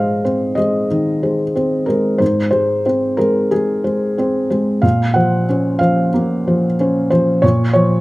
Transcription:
0.00 0.85 G#2 soft
0.00 0.21 G#3 soft
0.00 0.22 C5 soft
0.00 0.55 D#5 soft
0.00 0.56 F5 medium
0.24 0.54 C4 soft
0.24 0.54 C5 soft
0.55 0.87 G#3 soft
0.55 0.87 C5 soft
0.55 1.87 D#5 medium
0.91 1.42 D#3 soft
1.23 1.52 G#3 soft
1.23 1.52 C5 soft
1.55 1.85 C4 soft
1.55 1.85 C5 soft
1.86 2.17 G#3 soft
1.86 2.20 A#4 soft
1.86 2.17 C5 soft
2.18 3.48 G#2 soft
2.18 2.49 C5 soft
2.51 2.82 G#3 soft
2.51 2.84 C5 medium
2.86 3.16 C4 soft
2.86 3.16 C5 soft
3.17 3.49 G#3 soft
3.17 3.51 A#4 medium
3.17 3.48 C5 soft
3.51 3.83 G#3 soft
3.51 4.83 G#4 medium
3.84 4.14 G#3 soft
3.84 4.14 C5 soft
4.18 4.47 C4 soft
4.18 4.48 C5 soft
4.50 4.80 G#3 soft
4.50 4.80 C5 soft
4.82 6.10 A#2 soft
4.82 5.15 F5 medium
5.14 5.45 F3 soft
5.14 5.45 C5 soft
5.14 5.80 F#5 medium
5.49 5.78 C#4 soft
5.49 5.79 C5 soft
5.79 6.10 F3 soft
5.79 6.10 C5 soft
5.79 7.10 F5 medium
6.14 6.66 A#3 soft
6.47 6.76 F3 soft
6.47 6.76 C5 soft
6.80 7.08 C#4 soft
6.80 7.09 C5 soft
7.10 7.40 F3 soft
7.10 7.43 C5 medium
7.42 8.01 A#2 soft
7.42 7.72 C#5 medium
7.73 8.01 F3 soft
7.73 8.01 C5 soft
7.73 8.01 C#5 medium

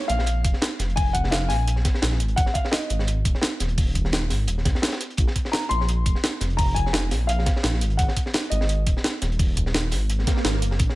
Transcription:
0.02 closed hi-hat soft
0.08 0.43 A#1 medium
0.08 0.99 F5 loud
0.08 closed hi-hat medium
0.19 snare medium
0.26 closed hi-hat medium
0.45 0.53 F1 medium
0.45 kick loud
0.45 closed hi-hat medium
0.53 snare soft
0.62 snare loud
0.62 closed hi-hat medium
0.79 1.51 F1 medium
0.79 snare soft
0.79 closed hi-hat medium
0.90 closed hi-hat soft
0.96 1.15 G#5 loud
0.96 kick loud
0.96 closed hi-hat medium
0.96 open hi-hat medium
1.13 1.32 F#5 loud
1.13 kick medium
1.13 closed hi-hat medium
1.24 snare soft
1.31 1.50 F5 loud
1.31 snare loud
1.31 closed hi-hat medium
1.49 1.84 A#1 medium
1.49 2.15 G#5 loud
1.49 snare medium
1.49 closed hi-hat medium
1.49 open hi-hat medium
1.68 closed hi-hat medium
1.76 snare soft
1.85 kick loud
1.85 snare medium
1.85 closed hi-hat loud
1.85 closed hi-hat medium
1.94 snare medium
2.02 2.22 A#1 loud
2.02 snare loud
2.02 closed hi-hat medium
2.12 snare medium
2.20 2.36 G#1 medium
2.20 closed hi-hat medium
2.20 closed hi-hat loud
2.28 closed hi-hat soft
2.36 2.46 G#1 loud
2.36 2.53 F#5 loud
2.36 kick loud
2.36 closed hi-hat medium
2.46 snare soft
2.54 2.71 F5 medium
2.54 kick medium
2.54 closed hi-hat medium
2.65 snare medium
2.71 3.21 D#5 medium
2.71 snare loud
2.71 closed hi-hat medium
2.82 closed hi-hat soft
2.90 3.24 G#1 loud
2.90 closed hi-hat medium
2.99 snare medium
3.07 closed hi-hat medium
3.25 3.34 D#1 medium
3.25 kick loud
3.25 closed hi-hat medium
3.25 closed hi-hat loud
3.35 snare soft
3.41 snare loud
3.41 closed hi-hat medium
3.60 4.32 D#1 medium
3.60 snare soft
3.60 closed hi-hat medium
3.60 closed hi-hat loud
3.69 closed hi-hat soft
3.78 kick loud
3.78 closed hi-hat medium
3.78 open hi-hat medium
3.95 kick medium
3.95 closed hi-hat medium
4.05 snare soft
4.12 snare loud
4.12 closed hi-hat medium
4.30 4.47 G#1 medium
4.30 snare medium
4.30 closed hi-hat medium
4.30 open hi-hat medium
4.48 4.67 D#1 medium
4.48 closed hi-hat medium
4.58 snare soft
4.65 4.74 D#2 medium
4.65 kick loud
4.65 snare medium
4.65 closed hi-hat medium
4.75 snare medium
4.82 snare medium
4.82 snare loud
4.82 closed hi-hat medium
4.88 snare medium
4.88 closed hi-hat medium
4.92 snare loud
4.92 closed hi-hat medium
5.01 closed hi-hat medium
5.10 closed hi-hat soft
5.17 5.27 A#1 loud
5.17 kick loud
5.17 closed hi-hat medium
5.27 snare soft
5.36 kick medium
5.36 closed hi-hat medium
5.45 snare medium
5.52 5.71 A#5 loud
5.52 snare loud
5.52 closed hi-hat medium
5.63 closed hi-hat soft
5.69 6.05 A#1 medium
5.69 6.36 C6 loud
5.69 closed hi-hat medium
5.81 snare soft
5.89 closed hi-hat medium
6.06 6.14 F1 medium
6.06 kick loud
6.06 closed hi-hat medium
6.15 snare soft
6.24 snare loud
6.24 closed hi-hat medium
6.41 7.13 F1 medium
6.41 snare soft
6.41 closed hi-hat medium
6.50 closed hi-hat soft
6.57 6.76 A#5 loud
6.57 kick loud
6.57 closed hi-hat medium
6.57 open hi-hat medium
6.74 7.30 G#5 loud
6.74 kick medium
6.74 closed hi-hat medium
6.86 snare medium
6.93 snare loud
6.93 closed hi-hat medium
7.11 7.45 A#1 medium
7.11 snare medium
7.11 closed hi-hat medium
7.11 open hi-hat medium
7.27 8.00 F5 medium
7.27 closed hi-hat medium
7.27 closed hi-hat loud
7.39 snare soft
7.46 kick loud
7.46 snare medium
7.46 closed hi-hat medium
7.56 snare medium
7.63 7.83 A#1 loud
7.63 snare loud
7.63 closed hi-hat medium
7.74 snare medium
7.81 7.97 G#1 medium
7.81 closed hi-hat medium
7.90 closed hi-hat soft
7.97 8.07 G#1 loud
7.97 8.52 F#5 medium
7.97 kick loud
7.97 closed hi-hat medium
8.08 snare soft
8.16 kick medium
8.16 closed hi-hat medium
8.26 snare soft
8.34 snare loud
8.34 closed hi-hat medium
8.44 closed hi-hat soft
8.50 8.85 G#1 loud
8.50 9.00 D#5 medium
8.50 closed hi-hat medium
8.61 snare medium
8.69 closed hi-hat medium
8.87 8.95 D#1 medium
8.87 kick loud
8.87 closed hi-hat medium
8.97 snare soft
9.04 snare loud
9.04 closed hi-hat medium
9.22 9.94 D#1 medium
9.22 snare soft
9.22 closed hi-hat medium
9.32 closed hi-hat soft
9.39 kick loud
9.39 closed hi-hat medium
9.39 open hi-hat medium
9.57 kick medium
9.57 closed hi-hat medium
9.66 snare soft
9.74 snare loud
9.74 closed hi-hat medium
9.91 10.26 G#1 medium
9.91 snare soft
9.91 closed hi-hat medium
9.91 open hi-hat medium
10.10 closed hi-hat medium
10.10 swell medium
10.19 snare soft
10.27 kick loud
10.27 snare medium
10.27 closed hi-hat medium
10.37 snare medium
10.45 10.64 G#1 loud
10.45 snare loud
10.45 closed hi-hat medium
10.54 snare medium
10.62 10.78 F#1 medium
10.62 closed hi-hat medium
10.71 snare soft
10.79 10.88 A#1 loud
10.79 kick loud
10.79 closed hi-hat medium
10.89 snare soft

